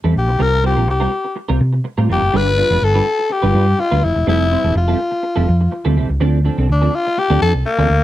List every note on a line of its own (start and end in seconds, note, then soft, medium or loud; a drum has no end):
0.04 0.13 E2 medium
0.04 0.14 G3 medium
0.04 0.14 C4 medium
0.04 0.14 E4 medium
0.04 0.14 A4 medium
0.15 0.28 A#1 medium
0.15 0.43 G4 medium
0.15 muted clean electric guitar stroke soft
0.28 0.37 B1 medium
0.28 muted clean electric guitar stroke soft
0.39 0.77 C2 loud
0.39 0.56 G3 medium
0.39 0.57 C4 medium
0.39 0.57 F4 medium
0.39 0.57 A#4 medium
0.39 0.65 A#4 loud
0.63 0.75 G3 medium
0.63 0.75 C4 medium
0.63 0.75 F4 medium
0.63 0.88 G4 medium
0.63 0.75 C5 medium
0.76 0.88 A#1 medium
0.76 0.87 G3 medium
0.76 0.87 C4 medium
0.76 0.87 F4 medium
0.76 0.87 A#4 medium
0.88 1.06 C2 medium
0.88 1.34 G4 medium
0.88 muted clean electric guitar stroke soft
1.00 1.10 G3 medium
1.00 1.11 C4 medium
1.00 1.11 F4 medium
1.00 1.11 A#4 medium
1.11 muted clean electric guitar stroke soft
1.24 muted clean electric guitar stroke soft
1.36 muted clean electric guitar stroke soft
1.48 1.58 C2 loud
1.48 1.59 G3 medium
1.48 1.60 C4 medium
1.48 1.60 F4 medium
1.48 1.60 A#4 loud
1.60 1.79 C3 medium
1.60 muted clean electric guitar stroke soft
1.73 muted clean electric guitar stroke soft
1.84 muted clean electric guitar stroke soft
1.98 2.06 A2 medium
1.98 2.08 G3 medium
1.98 2.08 C4 medium
1.98 2.09 F4 medium
1.98 2.09 A#4 medium
2.09 2.19 F1 medium
2.09 2.23 G3 medium
2.09 2.22 C4 medium
2.09 2.21 F4 medium
2.09 2.38 G4 loud
2.09 2.21 A#4 medium
2.22 2.31 F#1 medium
2.22 muted clean electric guitar stroke medium
2.33 2.61 G1 loud
2.33 2.50 G3 loud
2.33 2.50 D4 loud
2.33 2.51 F4 medium
2.33 2.51 B4 loud
2.33 2.85 B4 loud
2.57 2.70 G3 medium
2.57 2.70 D4 medium
2.57 2.70 F4 medium
2.57 2.69 B4 medium
2.70 2.79 F1 loud
2.70 2.81 G3 medium
2.70 2.81 D4 medium
2.70 2.81 F4 medium
2.70 2.81 B4 medium
2.82 3.00 G1 medium
2.82 3.33 A4 loud
2.95 3.05 G3 medium
2.95 3.05 D4 medium
2.95 3.05 F4 medium
2.95 3.05 B4 medium
3.06 muted clean electric guitar stroke soft
3.19 muted clean electric guitar stroke soft
3.30 3.81 G4 medium
3.30 muted clean electric guitar stroke soft
3.42 3.52 G1 medium
3.42 3.53 G3 medium
3.42 3.53 D4 medium
3.42 3.54 F4 medium
3.42 3.54 B4 medium
3.54 3.73 G2 loud
3.54 3.68 G3 medium
3.54 3.66 D4 medium
3.54 3.66 F4 medium
3.54 3.66 B4 medium
3.67 muted clean electric guitar stroke medium
3.78 4.06 F4 loud
3.78 muted clean electric guitar stroke soft
3.91 4.00 D2 medium
3.91 4.01 G3 medium
3.91 4.02 D4 medium
3.91 4.03 F4 medium
3.91 4.03 B4 medium
4.02 4.13 F1 medium
4.02 4.28 E4 medium
4.02 muted clean electric guitar stroke soft
4.15 4.24 E1 medium
4.15 muted clean electric guitar stroke soft
4.27 4.55 F1 loud
4.27 4.44 G3 medium
4.27 4.44 C4 medium
4.27 4.44 E4 loud
4.27 4.73 E4 medium
4.27 4.44 A4 medium
4.51 4.64 G3 medium
4.51 4.64 C4 medium
4.51 4.63 E4 medium
4.51 4.63 C5 medium
4.64 4.73 E1 medium
4.64 4.74 G3 medium
4.64 4.74 C4 medium
4.64 4.74 E4 medium
4.64 4.74 A4 medium
4.75 4.93 F1 medium
4.75 5.93 F4 medium
4.75 muted clean electric guitar stroke soft
4.88 4.98 G3 medium
4.88 4.98 C4 medium
4.88 4.98 E4 medium
4.88 4.98 A4 medium
4.99 muted clean electric guitar stroke soft
5.11 muted clean electric guitar stroke soft
5.23 muted clean electric guitar stroke soft
5.36 5.45 F1 medium
5.36 5.46 G3 medium
5.36 5.46 C4 medium
5.36 5.47 E4 medium
5.36 5.47 A4 medium
5.47 5.66 F2 medium
5.47 muted clean electric guitar stroke medium
5.61 muted clean electric guitar stroke soft
5.72 muted clean electric guitar stroke soft
5.85 5.98 D2 medium
5.85 5.95 G3 medium
5.85 5.96 C4 medium
5.85 5.96 E4 medium
5.85 5.97 A4 medium
5.97 6.06 C2 medium
5.97 6.10 G3 medium
5.97 6.09 C4 medium
5.97 6.08 E4 medium
5.97 6.08 A4 medium
6.09 6.18 C#2 medium
6.09 muted clean electric guitar stroke soft
6.20 6.48 D2 loud
6.20 6.37 F3 loud
6.20 6.38 C4 loud
6.20 6.38 D4 loud
6.20 6.38 A4 loud
6.44 6.58 F3 medium
6.44 6.57 C4 medium
6.44 6.57 D4 medium
6.44 6.57 A4 medium
6.58 6.66 C2 loud
6.58 6.68 F3 medium
6.58 6.68 C4 medium
6.58 6.68 D4 medium
6.58 6.68 A4 medium
6.69 6.87 D2 medium
6.69 6.97 D4 medium
6.69 muted clean electric guitar stroke soft
6.82 6.92 F3 medium
6.82 6.92 C4 medium
6.82 6.92 D4 medium
6.82 6.93 A4 medium
6.93 7.20 F4 loud
6.93 muted clean electric guitar stroke soft
7.06 muted clean electric guitar stroke soft
7.17 7.41 G4 loud
7.17 muted clean electric guitar stroke soft
7.30 7.39 D2 medium
7.30 7.40 F3 medium
7.30 7.40 C4 medium
7.30 7.40 D4 loud
7.30 7.40 A4 loud
7.41 7.51 F2 medium
7.41 7.55 F3 medium
7.41 7.53 C4 medium
7.41 7.53 A4 loud
7.54 7.63 C2 medium
7.54 muted clean electric guitar stroke soft
7.65 8.04 A#3 loud
7.65 muted clean electric guitar stroke soft
7.79 7.87 D2 medium
7.79 7.88 F3 medium
7.79 7.88 C4 medium
7.79 7.89 D4 medium
7.79 7.89 A4 medium
7.89 7.99 D2 medium
7.89 muted clean electric guitar stroke soft